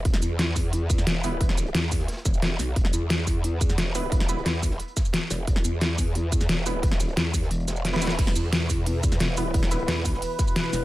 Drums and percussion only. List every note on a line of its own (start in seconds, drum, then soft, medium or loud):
0.05 kick loud
0.05 closed hi-hat medium
0.14 snare medium
0.22 closed hi-hat medium
0.22 shaker medium
0.39 snare loud
0.39 closed hi-hat medium
0.56 kick medium
0.56 closed hi-hat medium
0.56 open hi-hat medium
0.56 shaker medium
0.73 closed hi-hat medium
0.90 kick loud
0.90 closed hi-hat medium
0.90 shaker medium
0.98 snare soft
0.98 closed hi-hat soft
0.98 shaker soft
1.07 snare loud
1.07 closed hi-hat medium
1.24 closed hi-hat medium
1.24 open hi-hat medium
1.24 shaker medium
1.41 kick loud
1.41 closed hi-hat medium
1.49 snare soft
1.49 snare medium
1.58 closed hi-hat medium
1.58 shaker medium
1.66 closed hi-hat soft
1.75 snare loud
1.75 closed hi-hat medium
1.75 open hi-hat medium
1.92 kick medium
1.92 closed hi-hat medium
1.92 open hi-hat medium
1.92 shaker medium
1.99 snare soft
2.08 snare medium
2.08 closed hi-hat medium
2.12 snare loud
2.12 closed hi-hat medium
2.17 snare loud
2.17 closed hi-hat medium
2.25 kick loud
2.25 snare soft
2.25 closed hi-hat medium
2.25 shaker medium
2.34 closed hi-hat soft
2.34 shaker soft
2.42 snare loud
2.42 closed hi-hat medium
2.59 snare soft
2.59 closed hi-hat medium
2.59 open hi-hat medium
2.59 shaker medium
2.76 kick loud
2.76 closed hi-hat medium
2.85 snare medium
2.93 closed hi-hat medium
2.93 shaker medium
3.10 snare loud
3.10 closed hi-hat medium
3.27 kick medium
3.27 closed hi-hat medium
3.27 open hi-hat medium
3.27 shaker medium
3.44 closed hi-hat medium
3.61 kick loud
3.61 closed hi-hat medium
3.61 shaker medium
3.70 snare soft
3.70 closed hi-hat soft
3.70 shaker soft
3.78 snare loud
3.78 closed hi-hat loud
3.78 closed hi-hat medium
3.95 closed hi-hat medium
3.95 open hi-hat medium
3.95 shaker medium
4.12 kick loud
4.12 closed hi-hat medium
4.20 snare soft
4.20 snare medium
4.28 closed hi-hat medium
4.28 shaker medium
4.38 closed hi-hat soft
4.45 snare loud
4.45 closed hi-hat loud
4.45 open hi-hat medium
4.63 kick medium
4.63 closed hi-hat medium
4.63 open hi-hat medium
4.63 shaker medium
4.71 snare medium
4.79 closed hi-hat medium
4.88 closed hi-hat soft
4.97 kick loud
4.97 snare soft
4.97 closed hi-hat medium
4.97 shaker medium
5.05 closed hi-hat soft
5.05 shaker soft
5.13 snare loud
5.13 closed hi-hat medium
5.13 closed hi-hat loud
5.30 snare soft
5.30 closed hi-hat medium
5.30 open hi-hat medium
5.30 shaker medium
5.47 kick loud
5.47 closed hi-hat medium
5.47 closed hi-hat loud
5.56 snare medium
5.64 closed hi-hat medium
5.64 shaker medium
5.81 snare loud
5.81 closed hi-hat medium
5.81 closed hi-hat loud
5.98 kick medium
5.98 closed hi-hat medium
5.98 open hi-hat medium
5.98 shaker medium
6.15 closed hi-hat loud
6.32 kick loud
6.32 closed hi-hat medium
6.32 shaker medium
6.40 snare soft
6.40 closed hi-hat soft
6.40 shaker soft
6.49 snare loud
6.49 closed hi-hat loud
6.49 closed hi-hat medium
6.66 closed hi-hat medium
6.66 open hi-hat medium
6.66 shaker medium
6.83 kick loud
6.83 closed hi-hat loud
6.92 snare soft
6.92 snare medium
7.00 closed hi-hat medium
7.00 shaker medium
7.09 closed hi-hat soft
7.17 snare loud
7.17 closed hi-hat loud
7.17 open hi-hat medium
7.34 kick medium
7.34 closed hi-hat medium
7.34 open hi-hat medium
7.34 shaker medium
7.42 snare medium
7.51 closed hi-hat loud
7.51 closed hi-hat medium
7.60 closed hi-hat soft
7.67 snare loud
7.67 closed hi-hat medium
7.67 shaker medium
7.76 closed hi-hat soft
7.76 shaker soft
7.84 snare loud
7.84 snare medium
7.84 closed hi-hat medium
7.84 closed hi-hat loud
7.93 snare loud
7.93 closed hi-hat medium
7.96 snare medium
8.02 snare loud
8.02 closed hi-hat medium
8.02 open hi-hat medium
8.02 shaker medium
8.07 snare loud
8.07 shaker soft
8.10 snare loud
8.10 closed hi-hat medium
8.19 kick loud
8.19 closed hi-hat loud
8.19 closed hi-hat medium
8.19 ride medium
8.19 crash medium
8.27 snare medium
8.36 closed hi-hat medium
8.36 ride medium
8.36 shaker medium
8.53 snare loud
8.53 closed hi-hat loud
8.53 closed hi-hat medium
8.53 ride medium
8.69 kick medium
8.69 closed hi-hat medium
8.69 open hi-hat medium
8.69 ride medium
8.69 shaker medium
8.86 closed hi-hat medium
8.86 closed hi-hat loud
8.86 ride medium
9.03 kick loud
9.03 closed hi-hat medium
9.03 ride medium
9.03 shaker medium
9.12 snare soft
9.12 closed hi-hat soft
9.12 shaker soft
9.19 snare loud
9.19 closed hi-hat loud
9.19 ride medium
9.36 closed hi-hat medium
9.36 open hi-hat medium
9.36 ride medium
9.36 shaker medium
9.54 kick loud
9.54 closed hi-hat loud
9.54 closed hi-hat medium
9.54 ride medium
9.63 snare soft
9.63 snare medium
9.71 closed hi-hat medium
9.71 ride medium
9.71 shaker medium
9.79 closed hi-hat soft
9.87 snare loud
9.87 closed hi-hat loud
9.87 open hi-hat medium
9.87 ride medium
10.05 kick medium
10.05 closed hi-hat medium
10.05 open hi-hat medium
10.05 ride medium
10.05 shaker medium
10.14 snare medium
10.22 closed hi-hat loud
10.22 ride medium
10.30 closed hi-hat soft
10.38 kick loud
10.38 snare soft
10.38 closed hi-hat medium
10.38 ride medium
10.38 shaker medium
10.47 closed hi-hat soft
10.47 shaker soft
10.56 snare loud
10.56 closed hi-hat medium
10.56 closed hi-hat loud
10.56 ride medium
10.72 snare soft
10.72 closed hi-hat medium
10.72 open hi-hat medium
10.72 ride medium
10.72 shaker medium